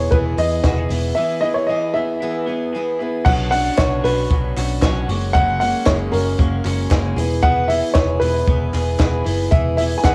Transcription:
Already playing: E3 B3 E4 G#4 C#5
0.11 E1 E3 B3 E4 G#4 B4, kick, closed hi-hat
0.37 E2 B3 E4 G#4 D#5, open hi-hat
0.64 E1 E3 B3 E4 F#4 G#4, kick, snare, closed hi-hat
0.78 G#4
0.89 E1 B3 E4 G#4, open hi-hat
1.15 E3 B3 E4 G#4 E5
1.41 B3 E4 G#4 D#5
1.54 C#5
1.67 E3 B3 E4 G#4 D#5
1.94 B3 E4 G#4 E5
2.22 E3 B3 E4 G#4
2.47 B3 E4 G#4
2.73 E3 B3 E4 G#4
2.77 G#4
3.00 B3 E4 G#4
3.25 B1 B2 F#3 C#4 D4 F#4 F#5, kick, crash
3.51 C#4 D4 F#4 F#5, open hi-hat
3.78 B1 B2 F#3 C#4 D4 F#4 C#5, kick, snare, clap, closed hi-hat
4.04 B1 C#4 D4 F#4 B4 C#5, open hi-hat
4.30 B1 F#3 B3 C#4 D4 F#4, kick, closed hi-hat
4.57 B1 C#4 D4 F#4, clap, open hi-hat
4.82 B1 B2 F#3 C#4 D4 F#4 C#5, kick, snare, clap
5.08 F#1 F#3 G#3 A#3 C#4 F#4, open hi-hat
5.33 F#2 C#3 F#3 G#3 A#3 C#4 F#4 F#5, kick, closed hi-hat
5.60 G#3 A#3 C#4 F#4 F#5, open hi-hat
5.86 F#1 F#2 C#3 G#3 A#3 C#4 F#4 C#5, kick, snare, clap
6.12 F#1 G#3 A#3 C#4 F#4 G#4 A#4, open hi-hat
6.38 F#1 G#3 A#3 C#4 F#4, kick, closed hi-hat
6.65 F#1 G#3 A#3 C#4 F#4, clap, open hi-hat
6.90 F#1 F#2 C#3 G#3 A#3 C#4 F#4 G#4, kick, snare, clap
7.16 E1 E3 B3 E4 G#4, open hi-hat
7.42 E3 B3 E4 G#4 F#5, kick, closed hi-hat
7.68 B3 E4 G#4 E5, open hi-hat
7.93 E1 E3 B3 E4 G#4 C#5, kick, snare, clap
8.20 E1 B3 E4 G#4 B4, open hi-hat
8.47 E1 E3 B3 E4 G#4, kick, closed hi-hat
8.73 E1 B3 E4 G#4, clap, open hi-hat
8.98 E1 E3 B3 E4 G#4 B4, kick, snare, clap, closed hi-hat
9.24 F#1 B3 E4 G#4, open hi-hat
9.51 E1 E3 B3 E4 G#4 E5, kick, closed hi-hat
9.77 B3 E4 G#4 E5, open hi-hat
9.98 G#5
10.03 E1 E3 B3 E4 G#4 F#5, kick, snare, clap, closed hi-hat

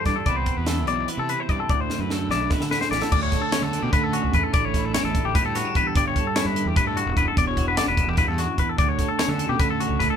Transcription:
Already playing: G2 E3 A4
0.06 G2 D4 D5, kick, snare, closed hi-hat
0.16 A4
0.26 C2 C3 E3 B3 C4 E4 D5, kick, closed hi-hat
0.36 C5
0.46 kick, closed hi-hat
0.57 E2 B4
0.66 E3 A4, snare, closed hi-hat
0.86 B1 C4 D5, closed hi-hat
1.08 E4 B4, closed hi-hat
1.17 C3 A4
1.28 C3 B4, closed hi-hat
1.40 C5
1.49 G2 C4 D5, kick, closed hi-hat
1.60 A4
1.69 D2 D5, kick, closed hi-hat
1.81 C5
1.90 snare
1.99 F#2 B4
2.10 D3 A4, snare
2.29 B1 E4 D5, snare
2.50 E4 B4, kick, snare
2.60 D3 F#4 A4, snare
2.71 A2 B4, snare
2.81 C5, snare
2.91 A1 E4 D5, snare
3.02 A4, snare
3.12 D2 D5, kick, crash
3.23 C#5
3.32 A4, kick, snare, closed hi-hat
3.42 A4
3.52 C#4 C#5, snare, closed hi-hat
3.62 D3 A4
3.73 D3, closed hi-hat
3.82 B2 G4
3.93 D3 A3 B4, kick, closed hi-hat
4.04 A4
4.13 C#4 F#4, closed hi-hat
4.24 C#2
4.33 E2 A2 A3 B4, kick, closed hi-hat
4.43 A4
4.54 A1 A2 D5, kick, closed hi-hat
4.65 C#5
4.74 E4, kick, snare, closed hi-hat
4.85 A4
4.94 D4 C#5, snare, closed hi-hat
5.04 A1 A4
5.14 D3, kick, closed hi-hat
5.24 A1 G4
5.35 A2 G3 B4, kick, closed hi-hat
5.44 A2 A4
5.54 B3 F#4, snare, closed hi-hat
5.65 D4
5.75 E2 G3 B4, kick, closed hi-hat
5.87 A4
5.95 G1 G2 D5, kick, closed hi-hat
6.07 C#5
6.16 A4, kick, closed hi-hat
6.27 A4
6.36 E4 C#5, snare, closed hi-hat
6.45 G2 B4
6.56 D3, closed hi-hat
6.65 E2 G4
6.76 G2 A2 B4, kick, closed hi-hat
6.87 A4
6.96 G2 F#4, closed hi-hat
7.06 E1
7.17 E1 F#2 B4, kick, closed hi-hat
7.28 A4
7.36 E1 E2 D5, kick, closed hi-hat
7.47 C#5
7.57 F#4, kick, closed hi-hat
7.68 B4
7.77 D4 D5, snare, closed hi-hat
7.87 E1 B4
7.97 E3, kick, closed hi-hat
8.08 E1 G4
8.17 E2 G2 B4, kick, snare, closed hi-hat
8.27 E2 A4
8.38 F#2 F#4, snare, closed hi-hat
8.58 E2 B4, kick, closed hi-hat
8.69 A4
8.78 D2 D5, kick, closed hi-hat
8.88 C#5
8.99 A4, kick, snare, closed hi-hat
9.08 A4
9.19 C#4 C#5, snare, closed hi-hat
9.28 D3 A4
9.39 D3, closed hi-hat
9.49 B2 G4
9.59 D3 A3 B4, kick, closed hi-hat
9.70 A4
9.80 C#4 F#4, closed hi-hat
9.89 C#2
9.99 C#2 A2 A3 B4, kick, snare, closed hi-hat
10.10 A4

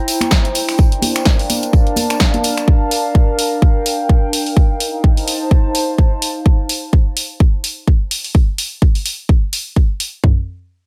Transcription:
Already playing: E4 C5 G5 A#5
0.08 open hi-hat, tambourine
0.20 finger snap, closed hi-hat, tambourine, high conga
0.31 kick, snare, tambourine
0.45 closed hi-hat
0.55 D4, open hi-hat, tambourine
0.69 finger snap, open hi-hat, tambourine
0.78 kick, tambourine
0.89 A#4, closed hi-hat
1.02 open hi-hat, tambourine, high conga
1.09 F5
1.15 finger snap, closed hi-hat, tambourine
1.25 kick, snare
1.39 open hi-hat
1.50 A5, open hi-hat, tambourine, high conga
1.63 closed hi-hat, tambourine
1.73 kick, tambourine
1.87 closed hi-hat
1.96 open hi-hat, tambourine, high conga
2.10 finger snap, closed hi-hat, tambourine
2.20 kick, snare
2.34 closed hi-hat, high conga
2.44 open hi-hat, tambourine
2.58 finger snap, closed hi-hat, tambourine
2.68 kick
2.91 open hi-hat
3.15 kick
3.39 open hi-hat
3.54 G5
3.62 kick
3.86 open hi-hat
4.09 kick
4.33 open hi-hat
4.46 open hi-hat
4.57 D#4, kick
4.80 open hi-hat
4.98 C5
5.04 A5, kick
5.17 open hi-hat
5.28 open hi-hat
5.51 kick
5.75 open hi-hat
5.98 kick
6.22 open hi-hat
6.46 kick
6.69 open hi-hat
6.93 kick
7.17 open hi-hat
7.40 kick
7.64 open hi-hat
7.87 kick
8.11 open hi-hat
8.24 open hi-hat
8.35 kick
8.58 open hi-hat
8.82 kick
8.95 open hi-hat
9.06 open hi-hat
9.29 kick
9.53 open hi-hat
9.76 kick
10.00 open hi-hat
10.24 kick, floor tom

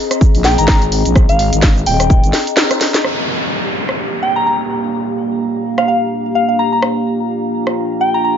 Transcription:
Already playing: C4 G#4 D#5 A#5
0.11 cross-stick, closed hi-hat, shaker
0.21 kick, shaker
0.35 A#1, open hi-hat, shaker
0.44 G5, snare, open hi-hat
0.58 G#1 A#5, closed hi-hat, shaker
0.68 kick, snare, shaker
0.82 closed hi-hat, shaker
0.92 open hi-hat
1.05 A#1, closed hi-hat, shaker
1.16 kick, cross-stick, shaker
1.29 G#1 F5, closed hi-hat, shaker
1.39 open hi-hat
1.53 G#1, closed hi-hat, shaker
1.62 kick, snare, shaker
1.77 shaker
1.86 D#1 G5, open hi-hat
2.00 cross-stick, closed hi-hat, shaker
2.10 kick, shaker
2.24 G#1, closed hi-hat, shaker
2.33 snare, open hi-hat
2.47 closed hi-hat, shaker
2.57 snare, shaker
2.71 cross-stick, closed hi-hat, shaker
2.81 snare, open hi-hat
2.94 snare, closed hi-hat, shaker
3.04 A#3 D4 G4 F5, cross-stick, downlifter
3.14 G4
3.55 F5
3.89 cross-stick
4.23 G5
4.36 A#5
4.46 A#5
5.78 F5, cross-stick
5.88 F5
6.35 F5
6.49 F5
6.59 A#5
6.72 A#5
6.82 F4, cross-stick
7.67 cross-stick
8.01 G5
8.14 A#5
8.24 A#5

